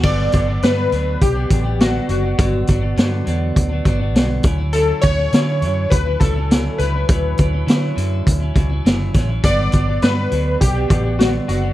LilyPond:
<<
  \new Staff \with { instrumentName = "Synth keys" } { \time 4/4 \key g \lydian \tempo 4 = 102 d''4 b'4 g'4 fis'8 fis'8~ | fis'4. r2 r8 | a'8 cis''4. b'8 a'4 b'8~ | b'4. r2 r8 |
d''4 b'4 g'4 fis'8 fis'8 | }
  \new Staff \with { instrumentName = "Clean electric guitar" } { \time 4/4 \key g \lydian <g, d fis b d'>8 <d fis b d'>16 <fis b d'>16 <g, d fis b d'>8 <d fis b d'>8. <fis b d'>16 <d fis b d'>16 <fis b d'>16 <g, d fis b d'>8 <d fis b d'>16 <fis b d'>16 | <g, d fis b d'>8 <d fis b d'>16 <fis b d'>16 <g, d fis b d'>8 <d fis b d'>8. <fis b d'>16 <d fis b d'>16 <fis b d'>16 <g, d fis b d'>8 <d fis cis' e'>16 <fis cis' e'>16 | <d fis cis' e'>8 <d fis cis' e'>16 <fis cis' e'>16 <d fis cis' e'>8 <d fis cis' e'>8. <fis cis' e'>16 <d fis cis' e'>16 <fis cis' e'>16 <d fis cis' e'>8 <d fis cis' e'>16 <fis cis' e'>16 | <d fis cis' e'>8 <d fis cis' e'>16 <fis cis' e'>16 <d fis cis' e'>8 <d fis cis' e'>8. <fis cis' e'>16 <d fis cis' e'>16 <fis cis' e'>16 <d fis cis' e'>8 <d fis cis' e'>16 <fis cis' e'>16 |
<g, d fis b d'>8 <d fis b d'>16 <fis b d'>16 <g, d fis b d'>8 <d fis b d'>8. <fis b d'>16 <d fis b d'>16 <fis b d'>16 <g, d fis b d'>8 <d fis b d'>16 <fis b d'>16 | }
  \new Staff \with { instrumentName = "Fingered electric bass" } { \clef bass \time 4/4 \key g \lydian g,,8 g,,8 g,8 d,8 b,,8 a,,4 fis,,8 | g,,8 g,,8 g,8 e,8 d,8 g,,8 b,,8 d,8~ | d,8 d,8 d8 fis,8 d,8 cis,4 cis,8 | d,8 d,8 d8 fis,8 d,8 cis,8 fis,,8 a,,8 |
g,,8 g,,8 g,8 d,8 b,,8 a,,4 fis,,8 | }
  \new DrumStaff \with { instrumentName = "Drums" } \drummode { \time 4/4 <cymc bd>8 <hh bd>8 <hh sn>8 hh8 <hh bd>8 <hh bd>8 <hh sn>8 hh8 | <hh bd>8 <hh bd>8 <hh sn>8 hh8 <hh bd>8 <hh bd>8 <hh sn>8 <hh bd>8 | hh8 <hh bd>8 <hh sn>8 hh8 <hh bd>8 <hh bd>8 <hh sn>8 hh8 | <hh bd>8 <hh bd>8 <hh sn>8 hh8 <hh bd>8 <hh bd>8 <hh sn>8 <hh bd sn>8 |
<hh bd>8 <hh bd>8 <hh sn>8 hh8 <hh bd>8 <hh bd>8 <hh sn>8 hh8 | }
>>